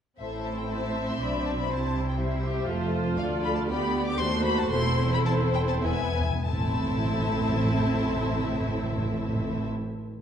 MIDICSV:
0, 0, Header, 1, 7, 480
1, 0, Start_track
1, 0, Key_signature, 0, "minor"
1, 0, Tempo, 497100
1, 188, Time_signature, 3, 2, 24, 8
1, 3544, Tempo, 529101
1, 4984, Tempo, 603622
1, 8927, End_track
2, 0, Start_track
2, 0, Title_t, "Violin section"
2, 0, Program_c, 0, 48
2, 179, Note_on_c, 0, 76, 57
2, 411, Note_off_c, 0, 76, 0
2, 430, Note_on_c, 0, 81, 52
2, 553, Note_off_c, 0, 81, 0
2, 557, Note_on_c, 0, 79, 52
2, 672, Note_on_c, 0, 81, 60
2, 678, Note_off_c, 0, 79, 0
2, 1039, Note_off_c, 0, 81, 0
2, 1050, Note_on_c, 0, 84, 57
2, 1166, Note_off_c, 0, 84, 0
2, 1174, Note_on_c, 0, 83, 60
2, 1403, Note_on_c, 0, 81, 57
2, 1407, Note_off_c, 0, 83, 0
2, 1450, Note_off_c, 0, 81, 0
2, 1527, Note_on_c, 0, 83, 58
2, 1640, Note_off_c, 0, 83, 0
2, 1650, Note_on_c, 0, 81, 72
2, 2001, Note_off_c, 0, 81, 0
2, 2017, Note_on_c, 0, 79, 50
2, 2119, Note_on_c, 0, 76, 54
2, 2122, Note_off_c, 0, 79, 0
2, 2825, Note_off_c, 0, 76, 0
2, 3062, Note_on_c, 0, 77, 71
2, 3139, Note_off_c, 0, 77, 0
2, 3313, Note_on_c, 0, 83, 68
2, 3427, Note_off_c, 0, 83, 0
2, 3434, Note_on_c, 0, 81, 65
2, 3481, Note_off_c, 0, 81, 0
2, 3556, Note_on_c, 0, 83, 75
2, 3890, Note_off_c, 0, 83, 0
2, 3902, Note_on_c, 0, 86, 80
2, 4008, Note_on_c, 0, 84, 97
2, 4012, Note_off_c, 0, 86, 0
2, 4247, Note_off_c, 0, 84, 0
2, 4247, Note_on_c, 0, 83, 89
2, 4366, Note_off_c, 0, 83, 0
2, 4376, Note_on_c, 0, 81, 88
2, 4491, Note_on_c, 0, 84, 93
2, 4494, Note_off_c, 0, 81, 0
2, 4853, Note_off_c, 0, 84, 0
2, 4867, Note_on_c, 0, 83, 85
2, 4916, Note_off_c, 0, 83, 0
2, 4983, Note_on_c, 0, 81, 79
2, 5046, Note_off_c, 0, 81, 0
2, 5208, Note_on_c, 0, 79, 86
2, 5255, Note_off_c, 0, 79, 0
2, 5320, Note_on_c, 0, 81, 75
2, 5369, Note_off_c, 0, 81, 0
2, 5437, Note_on_c, 0, 80, 84
2, 5925, Note_off_c, 0, 80, 0
2, 5939, Note_on_c, 0, 81, 72
2, 8483, Note_off_c, 0, 81, 0
2, 8927, End_track
3, 0, Start_track
3, 0, Title_t, "Violin section"
3, 0, Program_c, 1, 48
3, 190, Note_on_c, 1, 72, 37
3, 194, Note_on_c, 1, 69, 39
3, 644, Note_off_c, 1, 72, 0
3, 646, Note_off_c, 1, 69, 0
3, 680, Note_on_c, 1, 76, 46
3, 681, Note_on_c, 1, 72, 43
3, 1154, Note_off_c, 1, 72, 0
3, 1163, Note_on_c, 1, 74, 39
3, 1630, Note_off_c, 1, 74, 0
3, 1639, Note_on_c, 1, 72, 40
3, 1640, Note_off_c, 1, 72, 0
3, 1640, Note_off_c, 1, 76, 0
3, 1640, Note_on_c, 1, 72, 38
3, 2112, Note_off_c, 1, 72, 0
3, 2123, Note_on_c, 1, 72, 42
3, 2578, Note_off_c, 1, 72, 0
3, 2586, Note_on_c, 1, 69, 46
3, 2590, Note_on_c, 1, 72, 46
3, 3050, Note_off_c, 1, 69, 0
3, 3052, Note_off_c, 1, 72, 0
3, 3062, Note_on_c, 1, 69, 48
3, 3062, Note_on_c, 1, 74, 47
3, 3537, Note_off_c, 1, 69, 0
3, 3537, Note_off_c, 1, 74, 0
3, 3547, Note_on_c, 1, 67, 55
3, 3548, Note_on_c, 1, 74, 52
3, 4001, Note_off_c, 1, 67, 0
3, 4002, Note_off_c, 1, 74, 0
3, 4010, Note_on_c, 1, 69, 53
3, 4010, Note_on_c, 1, 72, 61
3, 4479, Note_off_c, 1, 72, 0
3, 4481, Note_off_c, 1, 69, 0
3, 4489, Note_on_c, 1, 72, 58
3, 4492, Note_on_c, 1, 69, 62
3, 5429, Note_off_c, 1, 72, 0
3, 5430, Note_off_c, 1, 69, 0
3, 5446, Note_on_c, 1, 76, 57
3, 5448, Note_on_c, 1, 71, 51
3, 5745, Note_off_c, 1, 76, 0
3, 5746, Note_off_c, 1, 71, 0
3, 5945, Note_on_c, 1, 69, 51
3, 5948, Note_on_c, 1, 76, 53
3, 8489, Note_off_c, 1, 69, 0
3, 8493, Note_off_c, 1, 76, 0
3, 8927, End_track
4, 0, Start_track
4, 0, Title_t, "Viola section"
4, 0, Program_c, 2, 48
4, 184, Note_on_c, 2, 64, 47
4, 185, Note_on_c, 2, 60, 45
4, 1121, Note_off_c, 2, 64, 0
4, 1156, Note_on_c, 2, 62, 45
4, 1626, Note_off_c, 2, 62, 0
4, 1636, Note_on_c, 2, 64, 44
4, 2073, Note_off_c, 2, 60, 0
4, 2103, Note_off_c, 2, 64, 0
4, 2115, Note_on_c, 2, 64, 48
4, 2116, Note_on_c, 2, 55, 40
4, 2346, Note_off_c, 2, 64, 0
4, 2354, Note_on_c, 2, 67, 54
4, 2588, Note_off_c, 2, 55, 0
4, 2588, Note_off_c, 2, 67, 0
4, 2589, Note_on_c, 2, 65, 57
4, 2590, Note_on_c, 2, 57, 51
4, 2810, Note_off_c, 2, 65, 0
4, 2822, Note_on_c, 2, 65, 57
4, 3046, Note_off_c, 2, 57, 0
4, 3057, Note_on_c, 2, 57, 55
4, 3531, Note_off_c, 2, 65, 0
4, 3534, Note_off_c, 2, 57, 0
4, 3544, Note_on_c, 2, 59, 54
4, 3545, Note_on_c, 2, 67, 51
4, 4009, Note_off_c, 2, 59, 0
4, 4009, Note_off_c, 2, 67, 0
4, 4010, Note_on_c, 2, 57, 67
4, 4010, Note_on_c, 2, 66, 65
4, 4481, Note_off_c, 2, 57, 0
4, 4488, Note_on_c, 2, 64, 74
4, 4489, Note_on_c, 2, 60, 65
4, 4490, Note_off_c, 2, 66, 0
4, 4967, Note_off_c, 2, 60, 0
4, 4978, Note_on_c, 2, 60, 56
4, 5433, Note_off_c, 2, 64, 0
4, 5435, Note_off_c, 2, 60, 0
4, 5441, Note_on_c, 2, 59, 59
4, 5442, Note_on_c, 2, 64, 54
4, 5506, Note_off_c, 2, 64, 0
4, 5742, Note_off_c, 2, 59, 0
4, 5934, Note_on_c, 2, 60, 63
4, 5934, Note_on_c, 2, 64, 63
4, 8478, Note_off_c, 2, 60, 0
4, 8478, Note_off_c, 2, 64, 0
4, 8927, End_track
5, 0, Start_track
5, 0, Title_t, "Timpani"
5, 0, Program_c, 3, 47
5, 5445, Note_on_c, 3, 40, 31
5, 5510, Note_off_c, 3, 40, 0
5, 5520, Note_on_c, 3, 40, 35
5, 5579, Note_off_c, 3, 40, 0
5, 5589, Note_on_c, 3, 40, 40
5, 5656, Note_off_c, 3, 40, 0
5, 5666, Note_on_c, 3, 40, 50
5, 5728, Note_off_c, 3, 40, 0
5, 5737, Note_on_c, 3, 40, 57
5, 5798, Note_off_c, 3, 40, 0
5, 5808, Note_on_c, 3, 40, 70
5, 5879, Note_off_c, 3, 40, 0
5, 5936, Note_on_c, 3, 45, 64
5, 5995, Note_off_c, 3, 45, 0
5, 5995, Note_on_c, 3, 45, 64
5, 6052, Note_off_c, 3, 45, 0
5, 6052, Note_on_c, 3, 45, 69
5, 6109, Note_off_c, 3, 45, 0
5, 6109, Note_on_c, 3, 45, 58
5, 6168, Note_off_c, 3, 45, 0
5, 6169, Note_on_c, 3, 45, 68
5, 6228, Note_off_c, 3, 45, 0
5, 6229, Note_on_c, 3, 45, 60
5, 6287, Note_off_c, 3, 45, 0
5, 6287, Note_on_c, 3, 45, 67
5, 6346, Note_off_c, 3, 45, 0
5, 6346, Note_on_c, 3, 45, 60
5, 6405, Note_off_c, 3, 45, 0
5, 6405, Note_on_c, 3, 45, 70
5, 6464, Note_off_c, 3, 45, 0
5, 6465, Note_on_c, 3, 45, 57
5, 6524, Note_off_c, 3, 45, 0
5, 6525, Note_on_c, 3, 45, 70
5, 6583, Note_off_c, 3, 45, 0
5, 6583, Note_on_c, 3, 45, 62
5, 6640, Note_off_c, 3, 45, 0
5, 6640, Note_on_c, 3, 45, 63
5, 6698, Note_off_c, 3, 45, 0
5, 6698, Note_on_c, 3, 45, 59
5, 6757, Note_off_c, 3, 45, 0
5, 6759, Note_on_c, 3, 45, 64
5, 6818, Note_off_c, 3, 45, 0
5, 6821, Note_on_c, 3, 45, 60
5, 6880, Note_off_c, 3, 45, 0
5, 6886, Note_on_c, 3, 45, 65
5, 6945, Note_off_c, 3, 45, 0
5, 7004, Note_on_c, 3, 45, 68
5, 7063, Note_off_c, 3, 45, 0
5, 7063, Note_on_c, 3, 45, 65
5, 7122, Note_off_c, 3, 45, 0
5, 7123, Note_on_c, 3, 45, 65
5, 7182, Note_off_c, 3, 45, 0
5, 7184, Note_on_c, 3, 45, 62
5, 7239, Note_off_c, 3, 45, 0
5, 7239, Note_on_c, 3, 45, 66
5, 7295, Note_off_c, 3, 45, 0
5, 7295, Note_on_c, 3, 45, 67
5, 7354, Note_off_c, 3, 45, 0
5, 7359, Note_on_c, 3, 45, 60
5, 7418, Note_off_c, 3, 45, 0
5, 7418, Note_on_c, 3, 45, 64
5, 7477, Note_off_c, 3, 45, 0
5, 7478, Note_on_c, 3, 45, 63
5, 7532, Note_off_c, 3, 45, 0
5, 7532, Note_on_c, 3, 45, 61
5, 7591, Note_off_c, 3, 45, 0
5, 7593, Note_on_c, 3, 45, 69
5, 7651, Note_off_c, 3, 45, 0
5, 7651, Note_on_c, 3, 45, 62
5, 7710, Note_off_c, 3, 45, 0
5, 7710, Note_on_c, 3, 45, 66
5, 7768, Note_off_c, 3, 45, 0
5, 7768, Note_on_c, 3, 45, 57
5, 7826, Note_off_c, 3, 45, 0
5, 7826, Note_on_c, 3, 45, 70
5, 7882, Note_off_c, 3, 45, 0
5, 7882, Note_on_c, 3, 45, 67
5, 7941, Note_off_c, 3, 45, 0
5, 7943, Note_on_c, 3, 45, 68
5, 8002, Note_off_c, 3, 45, 0
5, 8002, Note_on_c, 3, 45, 60
5, 8061, Note_off_c, 3, 45, 0
5, 8062, Note_on_c, 3, 45, 65
5, 8121, Note_off_c, 3, 45, 0
5, 8122, Note_on_c, 3, 45, 65
5, 8181, Note_off_c, 3, 45, 0
5, 8183, Note_on_c, 3, 45, 63
5, 8240, Note_off_c, 3, 45, 0
5, 8240, Note_on_c, 3, 45, 62
5, 8294, Note_off_c, 3, 45, 0
5, 8294, Note_on_c, 3, 45, 63
5, 8353, Note_off_c, 3, 45, 0
5, 8353, Note_on_c, 3, 45, 61
5, 8412, Note_off_c, 3, 45, 0
5, 8413, Note_on_c, 3, 45, 67
5, 8472, Note_off_c, 3, 45, 0
5, 8927, End_track
6, 0, Start_track
6, 0, Title_t, "Cello section"
6, 0, Program_c, 4, 48
6, 186, Note_on_c, 4, 45, 38
6, 1122, Note_off_c, 4, 45, 0
6, 1166, Note_on_c, 4, 47, 41
6, 1631, Note_off_c, 4, 47, 0
6, 1643, Note_on_c, 4, 48, 42
6, 2589, Note_off_c, 4, 48, 0
6, 2589, Note_on_c, 4, 41, 53
6, 3052, Note_off_c, 4, 41, 0
6, 3066, Note_on_c, 4, 38, 55
6, 4009, Note_on_c, 4, 39, 64
6, 4012, Note_off_c, 4, 38, 0
6, 4489, Note_on_c, 4, 40, 60
6, 4490, Note_off_c, 4, 39, 0
6, 5429, Note_off_c, 4, 40, 0
6, 5448, Note_on_c, 4, 40, 60
6, 5511, Note_off_c, 4, 40, 0
6, 5944, Note_on_c, 4, 45, 58
6, 8488, Note_off_c, 4, 45, 0
6, 8927, End_track
7, 0, Start_track
7, 0, Title_t, "Double bass section"
7, 0, Program_c, 5, 48
7, 188, Note_on_c, 5, 33, 43
7, 1122, Note_off_c, 5, 33, 0
7, 1164, Note_on_c, 5, 35, 39
7, 1630, Note_off_c, 5, 35, 0
7, 1640, Note_on_c, 5, 36, 46
7, 2587, Note_off_c, 5, 36, 0
7, 2590, Note_on_c, 5, 29, 48
7, 3053, Note_off_c, 5, 29, 0
7, 3065, Note_on_c, 5, 38, 57
7, 4006, Note_on_c, 5, 39, 55
7, 4012, Note_off_c, 5, 38, 0
7, 4488, Note_off_c, 5, 39, 0
7, 4489, Note_on_c, 5, 28, 66
7, 5429, Note_off_c, 5, 28, 0
7, 5443, Note_on_c, 5, 28, 52
7, 5507, Note_off_c, 5, 28, 0
7, 5942, Note_on_c, 5, 33, 59
7, 8486, Note_off_c, 5, 33, 0
7, 8927, End_track
0, 0, End_of_file